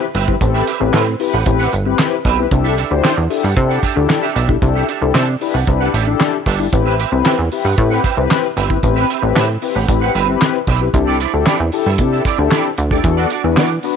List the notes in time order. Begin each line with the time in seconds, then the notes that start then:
0.02 muted clean electric guitar stroke
0.15 G1 C4 G4 B4 E5, closed hi-hat
0.27 C4 E4 G4 B4, muted clean electric guitar stroke, kick
0.41 A1 C4 E4 G4 A4, muted clean electric guitar stroke, kick, closed hi-hat
0.54 C4 G4 B4 E5
0.67 C4 G4 B4 E5, closed hi-hat
0.80 A1 C4 E4 G4 B4, muted clean electric guitar stroke
0.93 A2 C4 G4 B4 E5, snare, clap, closed hi-hat
1.07 muted clean electric guitar stroke
1.19 C4 E4 G4 B4, muted clean electric guitar stroke, open hi-hat
1.33 A1 C4 G4 B4 F#5
1.45 A1 C4 E4 G4 B4, muted clean electric guitar stroke, kick, closed hi-hat
1.59 C4 G4 B4 F#5
1.73 G1, muted clean electric guitar stroke, closed hi-hat
1.86 C4 E4 G4 B4, muted clean electric guitar stroke
1.99 muted clean electric guitar stroke, snare, clap, closed hi-hat
2.12 muted clean electric guitar stroke
2.25 B1 C4 G4 B4 E5, kick, closed hi-hat
2.38 C4 E4 G4 B4, muted clean electric guitar stroke
2.51 C2 D4 E4 G4 A4, muted clean electric guitar stroke, kick, closed hi-hat
2.64 D4 G4 A4 E5
2.78 D4 G4 A4 E5, closed hi-hat
2.91 D2 D4 E4 G4 C5, muted clean electric guitar stroke
3.04 D4 G4 A4 E5, snare, clap, closed hi-hat
3.17 E2, muted clean electric guitar stroke
3.29 D4 E4 G4 A4, muted clean electric guitar stroke, open hi-hat
3.43 G2 D4 G4 A4 F#5
3.56 C3 D4 E4 G4 A4, muted clean electric guitar stroke, kick, closed hi-hat
3.69 D4 G4 A4 F#5
3.83 D4 G4 A4 E5, kick, closed hi-hat
3.95 D2 D4 E4 G4 A4, muted clean electric guitar stroke
4.09 muted clean electric guitar stroke, snare, clap, closed hi-hat
4.22 D4 G4 A4 E5
4.35 B1 D4 G4 A4 E5, closed hi-hat
4.48 D4 E4 G4 A4, muted clean electric guitar stroke, kick
4.61 C2 D4 E4 G4 A4, muted clean electric guitar stroke, kick, closed hi-hat
4.75 D4 G4 A4 E5
4.88 D4 G4 A4 E5, closed hi-hat
5.01 C2 D4 E4 G4 A4, muted clean electric guitar stroke
5.14 C3 D4 G4 A4 E5, snare, clap, closed hi-hat
5.28 muted clean electric guitar stroke
5.41 D4 E4 G4 B4, muted clean electric guitar stroke, open hi-hat
5.54 C2 D4 G4 A4 F#5
5.67 C2 D4 E4 G4 B4, muted clean electric guitar stroke, kick, closed hi-hat
5.81 D4 G4 A4 F#5
5.94 A1 D4 G4 A4 E5, closed hi-hat
6.07 D4 E4 G4 A4, muted clean electric guitar stroke
6.20 muted clean electric guitar stroke, snare, clap, closed hi-hat
6.33 muted clean electric guitar stroke
6.46 G1 D4 G4 A4 E5, kick, open hi-hat
6.59 D4 E4 G4 A4, muted clean electric guitar stroke
6.72 A1 C4 E4 G4 B4, muted clean electric guitar stroke, kick, closed hi-hat
6.86 C4 G4 B4 E5
6.99 C4 G4 B4 E5, closed hi-hat
7.12 C2 C4 E4 G4 B4, muted clean electric guitar stroke
7.25 C4 G4 B4 E5, snare, clap, closed hi-hat
7.39 E2, muted clean electric guitar stroke
7.51 C4 E4 G4 B4, muted clean electric guitar stroke, open hi-hat
7.65 G2 C4 G4 B4 F#5
7.78 A2 C4 E4 G4 B4, muted clean electric guitar stroke, kick, closed hi-hat
7.91 C4 G4 B4 F#5
8.04 C4 G4 B4 E5, kick, closed hi-hat
8.17 C2 C4 E4 G4 B4, muted clean electric guitar stroke
8.30 muted clean electric guitar stroke, snare, clap, closed hi-hat
8.43 muted clean electric guitar stroke
8.57 G1 C4 G4 B4 E5, closed hi-hat
8.70 C4 E4 G4 B4, muted clean electric guitar stroke, kick
8.83 A1 C4 E4 G4 B4, muted clean electric guitar stroke, kick, closed hi-hat
8.96 C4 G4 B4 E5
9.09 C4 G4 B4 E5, closed hi-hat
9.22 A1 C4 E4 G4 B4, muted clean electric guitar stroke
9.35 A2 C4 G4 B4 E5, snare, clap, closed hi-hat
9.49 muted clean electric guitar stroke
9.62 C4 E4 G4 B4, muted clean electric guitar stroke, open hi-hat
9.75 A1 C4 G4 B4 F#5
9.88 A1 C4 E4 G4 B4, muted clean electric guitar stroke, kick, closed hi-hat
10.01 C4 G4 B4 F#5
10.14 G1 C4 G4 B4 E5, closed hi-hat
10.27 C4 E4 G4 B4, muted clean electric guitar stroke
10.41 snare, clap, closed hi-hat
10.55 muted clean electric guitar stroke
10.67 B1 C4 G4 B4 E5, kick, closed hi-hat
10.81 C4 E4 G4 B4, muted clean electric guitar stroke
10.94 C2 D4 E4 G4 A4, muted clean electric guitar stroke, kick, closed hi-hat
11.07 C4 E4 A4 D5
11.20 C4 E4 A4 D5, closed hi-hat
11.33 D2 D4 E4 G4 A4, muted clean electric guitar stroke
11.46 C4 E4 A4 D5, snare, clap, closed hi-hat
11.60 E2, muted clean electric guitar stroke
11.72 D4 E4 G4 A4, muted clean electric guitar stroke, open hi-hat
11.86 G2 C4 E4 A4 E5
11.98 C3 D4 E4 G4 A4, muted clean electric guitar stroke, kick, closed hi-hat
12.13 C4 E4 A4 E5
12.25 C4 E4 A4 D5, kick, closed hi-hat
12.39 D2 D4 E4 G4 A4, muted clean electric guitar stroke
12.51 C4 E4 A4 D5, snare, clap, closed hi-hat
12.65 muted clean electric guitar stroke
12.78 D2, muted clean electric guitar stroke, closed hi-hat
12.91 C4 D4 E4 G4 A4 D5, kick
13.04 E2 B3 D4 F#4 A4, muted clean electric guitar stroke, kick, closed hi-hat
13.17 D4 F#4 A4 D5
13.30 D4 F#4 A4 D5, closed hi-hat
13.44 E2 B3 D4 F#4 B4, muted clean electric guitar stroke
13.57 E3 D4 F#4 A4 D5, snare, clap, closed hi-hat
13.71 muted clean electric guitar stroke
13.83 B3 D4 F#4 B4, muted clean electric guitar stroke, open hi-hat